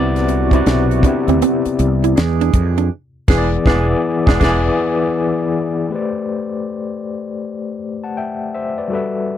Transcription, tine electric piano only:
0, 0, Header, 1, 2, 480
1, 0, Start_track
1, 0, Tempo, 750000
1, 1860, Time_signature, 4, 2, 24, 8
1, 6001, End_track
2, 0, Start_track
2, 0, Title_t, "Tine electric piano"
2, 0, Program_c, 0, 4
2, 0, Note_on_c, 0, 48, 108
2, 0, Note_on_c, 0, 59, 98
2, 0, Note_on_c, 0, 64, 97
2, 0, Note_on_c, 0, 74, 127
2, 60, Control_c, 0, 64, 127
2, 228, Note_off_c, 0, 48, 0
2, 232, Note_off_c, 0, 59, 0
2, 234, Note_off_c, 0, 64, 0
2, 239, Note_off_c, 0, 74, 0
2, 334, Note_on_c, 0, 48, 87
2, 341, Note_on_c, 0, 59, 74
2, 348, Note_on_c, 0, 64, 78
2, 356, Note_on_c, 0, 74, 89
2, 601, Note_off_c, 0, 48, 0
2, 605, Note_off_c, 0, 59, 0
2, 608, Note_off_c, 0, 64, 0
2, 612, Note_off_c, 0, 74, 0
2, 662, Note_on_c, 0, 48, 76
2, 670, Note_on_c, 0, 59, 70
2, 678, Note_on_c, 0, 64, 77
2, 684, Note_on_c, 0, 67, 82
2, 1381, Note_off_c, 0, 48, 0
2, 1385, Note_off_c, 0, 59, 0
2, 1389, Note_off_c, 0, 64, 0
2, 1390, Control_c, 0, 64, 0
2, 1392, Note_off_c, 0, 67, 0
2, 1501, Control_c, 0, 64, 127
2, 2099, Note_on_c, 0, 52, 98
2, 2104, Note_on_c, 0, 59, 85
2, 2114, Note_on_c, 0, 68, 85
2, 2162, Note_on_c, 0, 74, 101
2, 2274, Note_off_c, 0, 52, 0
2, 2277, Note_off_c, 0, 59, 0
2, 2283, Note_off_c, 0, 68, 0
2, 2310, Note_off_c, 0, 74, 0
2, 2342, Note_on_c, 0, 52, 101
2, 2348, Note_on_c, 0, 59, 103
2, 2364, Note_on_c, 0, 74, 97
2, 2398, Note_on_c, 0, 68, 92
2, 2516, Note_off_c, 0, 52, 0
2, 2519, Note_off_c, 0, 59, 0
2, 2528, Note_off_c, 0, 74, 0
2, 2548, Note_off_c, 0, 68, 0
2, 2730, Note_on_c, 0, 52, 98
2, 2738, Note_on_c, 0, 59, 94
2, 2753, Note_on_c, 0, 74, 87
2, 2787, Note_on_c, 0, 68, 87
2, 2806, Note_off_c, 0, 52, 0
2, 2810, Note_off_c, 0, 59, 0
2, 2819, Note_off_c, 0, 74, 0
2, 2822, Note_on_c, 0, 52, 95
2, 2830, Note_on_c, 0, 59, 85
2, 2839, Note_off_c, 0, 68, 0
2, 2843, Note_on_c, 0, 74, 103
2, 2878, Note_on_c, 0, 68, 101
2, 2996, Note_off_c, 0, 52, 0
2, 3000, Note_off_c, 0, 59, 0
2, 3008, Note_off_c, 0, 74, 0
2, 3028, Note_off_c, 0, 68, 0
2, 3769, Note_on_c, 0, 57, 57
2, 3780, Note_on_c, 0, 67, 53
2, 3787, Control_c, 0, 64, 0
2, 3789, Note_on_c, 0, 71, 60
2, 3800, Note_on_c, 0, 72, 54
2, 3811, Note_on_c, 0, 74, 64
2, 3911, Control_c, 0, 64, 127
2, 4961, Note_off_c, 0, 71, 0
2, 4966, Note_off_c, 0, 72, 0
2, 4972, Note_off_c, 0, 74, 0
2, 5143, Note_on_c, 0, 81, 51
2, 5147, Note_on_c, 0, 78, 44
2, 5222, Note_off_c, 0, 81, 0
2, 5224, Note_off_c, 0, 78, 0
2, 5230, Note_on_c, 0, 79, 58
2, 5234, Note_on_c, 0, 76, 44
2, 5454, Note_off_c, 0, 79, 0
2, 5456, Note_off_c, 0, 76, 0
2, 5468, Note_on_c, 0, 76, 59
2, 5472, Note_on_c, 0, 72, 51
2, 5609, Note_off_c, 0, 76, 0
2, 5611, Note_off_c, 0, 72, 0
2, 5618, Note_on_c, 0, 74, 53
2, 5622, Note_on_c, 0, 71, 46
2, 5669, Note_off_c, 0, 57, 0
2, 5675, Note_off_c, 0, 67, 0
2, 5683, Note_on_c, 0, 55, 57
2, 5696, Note_on_c, 0, 66, 60
2, 5706, Note_on_c, 0, 69, 58
2, 5708, Control_c, 0, 64, 0
2, 5710, Note_off_c, 0, 71, 0
2, 5718, Note_on_c, 0, 71, 56
2, 5727, Note_on_c, 0, 76, 65
2, 5833, Control_c, 0, 64, 127
2, 5844, Note_off_c, 0, 74, 0
2, 6001, Note_off_c, 0, 55, 0
2, 6001, Note_off_c, 0, 66, 0
2, 6001, Note_off_c, 0, 69, 0
2, 6001, Note_off_c, 0, 71, 0
2, 6001, Note_off_c, 0, 76, 0
2, 6001, End_track
0, 0, End_of_file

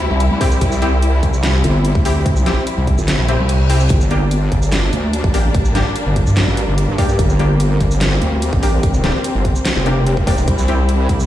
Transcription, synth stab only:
0, 0, Header, 1, 2, 480
1, 0, Start_track
1, 0, Tempo, 410959
1, 717, Time_signature, 4, 2, 24, 8
1, 13152, End_track
2, 0, Start_track
2, 0, Title_t, "Synth stab"
2, 0, Program_c, 0, 62
2, 476, Note_on_c, 0, 60, 75
2, 476, Note_on_c, 0, 64, 70
2, 476, Note_on_c, 0, 67, 88
2, 929, Note_off_c, 0, 60, 0
2, 929, Note_off_c, 0, 64, 0
2, 929, Note_off_c, 0, 67, 0
2, 956, Note_on_c, 0, 60, 87
2, 956, Note_on_c, 0, 64, 78
2, 956, Note_on_c, 0, 67, 90
2, 1032, Note_off_c, 0, 60, 0
2, 1032, Note_off_c, 0, 64, 0
2, 1032, Note_off_c, 0, 67, 0
2, 2397, Note_on_c, 0, 60, 76
2, 2397, Note_on_c, 0, 64, 75
2, 2397, Note_on_c, 0, 67, 85
2, 2849, Note_off_c, 0, 60, 0
2, 2849, Note_off_c, 0, 64, 0
2, 2849, Note_off_c, 0, 67, 0
2, 2877, Note_on_c, 0, 60, 87
2, 2877, Note_on_c, 0, 64, 73
2, 2877, Note_on_c, 0, 67, 88
2, 2952, Note_off_c, 0, 67, 0
2, 2953, Note_off_c, 0, 60, 0
2, 2953, Note_off_c, 0, 64, 0
2, 3837, Note_on_c, 0, 60, 83
2, 3837, Note_on_c, 0, 64, 72
2, 3837, Note_on_c, 0, 67, 89
2, 3958, Note_off_c, 0, 60, 0
2, 3958, Note_off_c, 0, 64, 0
2, 3958, Note_off_c, 0, 67, 0
2, 4316, Note_on_c, 0, 67, 84
2, 4317, Note_on_c, 0, 60, 77
2, 4317, Note_on_c, 0, 64, 68
2, 4437, Note_off_c, 0, 64, 0
2, 4437, Note_off_c, 0, 67, 0
2, 4438, Note_off_c, 0, 60, 0
2, 4797, Note_on_c, 0, 58, 79
2, 4797, Note_on_c, 0, 62, 76
2, 4797, Note_on_c, 0, 67, 90
2, 4872, Note_off_c, 0, 58, 0
2, 4872, Note_off_c, 0, 67, 0
2, 4873, Note_off_c, 0, 62, 0
2, 6237, Note_on_c, 0, 58, 78
2, 6237, Note_on_c, 0, 62, 72
2, 6237, Note_on_c, 0, 67, 84
2, 6689, Note_off_c, 0, 58, 0
2, 6689, Note_off_c, 0, 62, 0
2, 6689, Note_off_c, 0, 67, 0
2, 6717, Note_on_c, 0, 58, 87
2, 6717, Note_on_c, 0, 62, 77
2, 6717, Note_on_c, 0, 67, 93
2, 6792, Note_off_c, 0, 62, 0
2, 6793, Note_off_c, 0, 58, 0
2, 6793, Note_off_c, 0, 67, 0
2, 8157, Note_on_c, 0, 58, 77
2, 8157, Note_on_c, 0, 62, 73
2, 8157, Note_on_c, 0, 67, 85
2, 8609, Note_off_c, 0, 58, 0
2, 8609, Note_off_c, 0, 62, 0
2, 8609, Note_off_c, 0, 67, 0
2, 8637, Note_on_c, 0, 58, 84
2, 8637, Note_on_c, 0, 62, 76
2, 8637, Note_on_c, 0, 67, 92
2, 8712, Note_off_c, 0, 58, 0
2, 8712, Note_off_c, 0, 62, 0
2, 8712, Note_off_c, 0, 67, 0
2, 10077, Note_on_c, 0, 58, 78
2, 10077, Note_on_c, 0, 62, 74
2, 10077, Note_on_c, 0, 67, 85
2, 10529, Note_off_c, 0, 58, 0
2, 10529, Note_off_c, 0, 62, 0
2, 10529, Note_off_c, 0, 67, 0
2, 10557, Note_on_c, 0, 58, 87
2, 10557, Note_on_c, 0, 62, 78
2, 10557, Note_on_c, 0, 67, 94
2, 10633, Note_off_c, 0, 58, 0
2, 10633, Note_off_c, 0, 62, 0
2, 10633, Note_off_c, 0, 67, 0
2, 11517, Note_on_c, 0, 58, 83
2, 11517, Note_on_c, 0, 62, 74
2, 11517, Note_on_c, 0, 67, 86
2, 11638, Note_off_c, 0, 58, 0
2, 11638, Note_off_c, 0, 62, 0
2, 11638, Note_off_c, 0, 67, 0
2, 11997, Note_on_c, 0, 58, 78
2, 11997, Note_on_c, 0, 62, 71
2, 11997, Note_on_c, 0, 67, 85
2, 12118, Note_off_c, 0, 58, 0
2, 12118, Note_off_c, 0, 62, 0
2, 12118, Note_off_c, 0, 67, 0
2, 12477, Note_on_c, 0, 60, 81
2, 12477, Note_on_c, 0, 64, 73
2, 12477, Note_on_c, 0, 67, 97
2, 12552, Note_off_c, 0, 60, 0
2, 12552, Note_off_c, 0, 67, 0
2, 12553, Note_off_c, 0, 64, 0
2, 13152, End_track
0, 0, End_of_file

